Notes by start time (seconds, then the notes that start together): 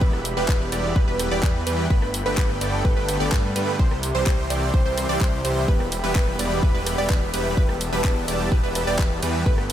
Already playing: G4 E5 B5, downlifter
0.01 E1 E3 G3 B3 G4 B4, kick
0.13 cross-stick
0.25 open hi-hat
0.37 E1 E3 G3 B3 G4 B4
0.48 E1 E3 G3 B3 G4 B4, kick, clap
0.72 E1 E3 G3 B3 G4 D5, open hi-hat
0.96 E1 G3 B3 G4 B4, kick
1.08 E1 E3 G3 B3 G4 B4
1.19 cross-stick, open hi-hat
1.31 E1 E3 G3 B3 G4 D5
1.43 E2 B4, kick, clap
1.67 E2 E3 G3 B3 G4 B4, open hi-hat
1.90 G1 D3 A3 B3 G4 A4 B4 G5, kick
2.02 cross-stick
2.14 open hi-hat
2.26 G1 D3 A3 B3 G4 B4
2.37 G1 D3 B3 G4 B4, kick, clap
2.50 cross-stick
2.61 G1 D3 A3 B3 G4 D5, open hi-hat
2.85 G1 D3 A3 B3 G4 B4, kick
2.97 G1 D3 A3 B3 G4 B4
3.09 cross-stick, open hi-hat
3.20 G1 D3 A3 B3 G4 D5
3.32 G2 D3 A3 B3 G4 B4, kick, clap
3.56 G2 D3 A3 B3 G4 B4, open hi-hat
3.79 C2 E3 G3 C4 G4 C5 E5 C6, kick
3.91 cross-stick
4.03 open hi-hat
4.15 C2 E3 G3 C4 G4 C5
4.26 C2 E3 G3 C4 G4 C5, kick, clap
4.50 C2 E3 G3 C4 G4 D5, open hi-hat
4.74 C2 E3 G3 C4 G4 C5, kick
4.85 C2 E3 G3 C4 G4 C5
4.98 cross-stick, open hi-hat
5.09 C2 E3 G3 C4 G4 D5
5.21 C2 E3 G3 C4 C5, kick, clap
5.44 C2 E3 G3 C4 G4 C5, open hi-hat
5.68 E1 E3 G3 B3 G4 B4 B5, kick
5.80 cross-stick
5.92 open hi-hat, ride
6.04 E1 E3 G3 B3 G4 B4
6.15 E1 E3 B3 G4 B4, kick, clap
6.28 cross-stick
6.39 E1 E3 G3 B3 G4 D5, open hi-hat, ride
6.63 E1 E3 G3 B3 B4, kick
6.75 E1 E3 G3 B3 G4 B4
6.87 cross-stick, open hi-hat, ride
6.98 E1 E3 G3 B3 G4 D5
7.10 E1 E3 G3 B3 G4 B4, kick, clap
7.33 E1 E3 G3 B3 G4 B4, open hi-hat, ride
7.57 E1 E3 G3 B3 G4 B4 A5, kick
7.69 cross-stick
7.81 open hi-hat, ride
7.93 E1 E3 G3 B3 G4 B4
8.04 E1 B3 G4 B4, kick, clap
8.28 E1 E3 G3 B3 G4 D5, open hi-hat, ride
8.52 E1 E3 G3 B3 G4 B4, kick
8.63 E1 E3 G3 B3 G4 B4
8.75 cross-stick, open hi-hat, ride
8.87 E1 E3 G3 B3 G4 D5
8.99 E1 E3 G3 B3 G4 B4, kick, clap
9.23 E2 E3 G3 B3 G4 B4, open hi-hat, ride
9.46 G1 D3 A3 B3 G4 A4 B4 G5 B5, kick
9.58 cross-stick